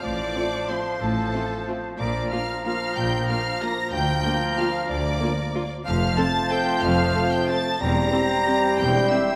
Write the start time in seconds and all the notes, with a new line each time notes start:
0.02 A1 A2 F3 C5 D5 A5 D6
0.35 F3 A3 C4 F4
0.68 F3 A3 C4 F4 C5 C6
1.00 A1 A2 A4 A5
1.32 F3 A3 C4 F4
1.67 F3 A3 C4 F4
1.98 A#1 A#2 F3 A#4 D5 A#5 D6
2.31 F3 A#3 D4 F4 F5 F6
2.64 F3 A#3 D4 F4 F5 F6
2.96 A#1 A#2 G5 G6
3.28 F3 A#3 D4 F4 F5 F6
3.61 F3 A#3 D4 F4 A#5 A#6
3.92 D2 F3 A#4 G5 A#5 G6
4.24 F3 A#3 D4 F4
4.56 F3 A#3 D4 F4 F5 F6
4.89 D2 D5 D6
5.20 F3 A#3 D4 F4
5.54 F3 A#3 D4 F4
5.85 F1 F2 F3 A3 C4 F4 C5 F5 A5 F6
6.17 C4 A4 A5 A6
6.51 C4 A4 G5 G6
6.82 F1 F2 F5 F6
7.15 C4 A4
7.32 G5 G6
7.48 C4 A4 A5 A6
7.80 E1 E2 C3 G3 C4 G4 C5 G5 A#5 A#6
8.13 C4 G4
8.46 C4 G4
8.78 E1 E2 G5 G6
9.11 C4 G4 E5 E6